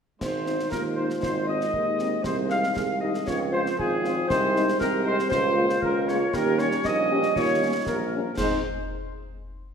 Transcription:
0.20 G#1 D#3 G#3 D#4 C5, concert bass drum, snare, crash
0.46 G#3 C4 D#4, snare
0.59 snare
0.71 D#2 F4 A#4, concert bass drum, snare
0.95 G#3 C4 D#4 C5
1.10 snare
1.21 G#1 C5, concert bass drum, snare
1.47 G#3 C4 D#4 D#5
1.61 snare
1.74 D#2 D#4, concert bass drum
1.99 G#3 C4 D#4, snare
2.23 C2 D#3 G#3 C5, concert bass drum, snare
2.50 G#3 C4 D#4 F5, snare
2.63 snare
2.76 C2 G#4, concert bass drum, snare
3.01 G#3 C4 D#4 G4 D#5
3.14 snare
3.26 C#2 F3 C4 F4 C#5, concert bass drum, snare
3.52 G#3 C4 F4 C5
3.66 snare
3.78 G#1 F4 G#4, concert bass drum
4.04 G#3 C4 F4, snare
4.28 C2 G#3 D#4 C5, concert bass drum, snare, crash
4.55 G#3 C4 D#4, snare
4.68 snare
4.79 C2 G4 A#4, concert bass drum, snare
5.05 G#3 C4 D#4 C5
5.19 snare
5.29 C#2 A#3 F4 C5, concert bass drum, snare
5.57 G#3 A#3 F4
5.69 snare
5.82 C#2 A#4, concert bass drum
6.07 G#3 A#3 F4 C#5, snare
6.33 D#2 G3 C#4 G4 A#4, concert bass drum, snare
6.58 G3 A#3 C#4 C#5, snare
6.71 snare
6.84 A#1 D#4 D#5, concert bass drum, snare
7.11 G3 A#3 C#4 G4
7.23 snare
7.36 D#2 F4 C#5, concert bass drum, snare
7.62 G3 A#3 C#4 D#4
7.86 A#1 G4 A#4, concert bass drum, snare
8.13 G3 A#3 C#4
8.37 G#2 G#3 C4 D#4 C5, concert bass drum, snare, crash

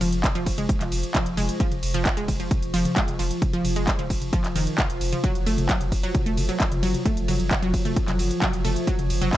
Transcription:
Already playing: F3
0.01 F1 F3, open hi-hat, mid tom, ride
0.12 F1, closed hi-hat
0.24 kick, clap, closed hi-hat, mid tom, ride
0.35 F1 F3, closed hi-hat
0.46 F1, kick, open hi-hat, ride
0.58 G#3, closed hi-hat, mid tom
0.69 kick, closed hi-hat, ride
0.81 F1 F3, clap, closed hi-hat, mid tom
0.92 F1, open hi-hat, ride
1.03 closed hi-hat
1.15 F3, kick, clap, closed hi-hat, mid tom, ride
1.26 F1, closed hi-hat
1.37 F1 G#3, open hi-hat, mid tom, ride
1.49 closed hi-hat
1.60 F3, kick, closed hi-hat, ride
1.72 F1, closed hi-hat, mid tom
1.83 F1, open hi-hat, ride
1.94 F1 F3, closed hi-hat, mid tom
2.06 kick, clap, closed hi-hat, ride
2.17 F1 G#3, closed hi-hat
2.28 F1, kick, open hi-hat, mid tom, ride
2.40 F3, closed hi-hat
2.51 kick, closed hi-hat, mid tom, ride
2.62 F1, closed hi-hat
2.74 F1 F3, open hi-hat, ride
2.85 closed hi-hat, mid tom
2.96 G#3, kick, clap, closed hi-hat, ride
3.08 F1, closed hi-hat, mid tom
3.19 F1 F3, open hi-hat, ride
3.31 closed hi-hat
3.42 kick, closed hi-hat, mid tom, ride
3.53 F1 F3, closed hi-hat
3.65 F1, open hi-hat, mid tom, ride
3.76 F1 G#3, closed hi-hat
3.87 kick, clap, closed hi-hat, ride
3.99 F1 F3, closed hi-hat, mid tom
4.10 F1, kick, open hi-hat, ride
4.22 closed hi-hat, mid tom
4.33 F3, kick, closed hi-hat, ride
4.44 F1, clap, closed hi-hat
4.56 F1 D#3, open hi-hat, mid tom, ride
4.67 closed hi-hat
4.78 F4, kick, clap, closed hi-hat, mid tom, ride
4.90 F1, closed hi-hat
5.01 F1, open hi-hat, ride
5.13 F3, closed hi-hat, mid tom
5.24 F#3, kick, closed hi-hat, mid tom, ride
5.35 F#1, closed hi-hat
5.46 F#1 A3, open hi-hat, ride
5.58 F#1, closed hi-hat, mid tom
5.69 F#3, kick, clap, closed hi-hat, ride
5.81 F#1, closed hi-hat, mid tom
5.92 F#1, kick, open hi-hat, ride
6.03 F#3, closed hi-hat
6.15 kick, closed hi-hat, mid tom, ride
6.26 F#1 A3, closed hi-hat
6.37 F#1, open hi-hat, mid tom, ride
6.49 F#3, closed hi-hat
6.60 kick, clap, closed hi-hat, ride
6.72 F#1, closed hi-hat, mid tom
6.83 F#1 F#3, open hi-hat, ride
6.94 closed hi-hat, mid tom
7.06 A3, kick, closed hi-hat, ride
7.17 F#1, closed hi-hat
7.28 F#1 F#3, open hi-hat, mid tom, ride
7.40 F#1, closed hi-hat
7.51 kick, clap, closed hi-hat, mid tom, ride
7.62 F#1 F#3, closed hi-hat
7.74 F#1, kick, open hi-hat, ride
7.85 A3, closed hi-hat, mid tom
7.96 kick, closed hi-hat, ride
8.08 F#1 F#3, clap, closed hi-hat, mid tom
8.19 F#1, open hi-hat, ride
8.31 closed hi-hat
8.42 F#3, kick, clap, closed hi-hat, mid tom, ride
8.53 F#1, closed hi-hat
8.65 F#1 A3, open hi-hat, mid tom, ride
8.76 closed hi-hat
8.87 F#3, kick, closed hi-hat, ride
8.99 F#1, closed hi-hat, mid tom
9.10 F#1, open hi-hat, ride
9.22 F#1 F#3, closed hi-hat, mid tom
9.33 kick, clap, closed hi-hat, ride

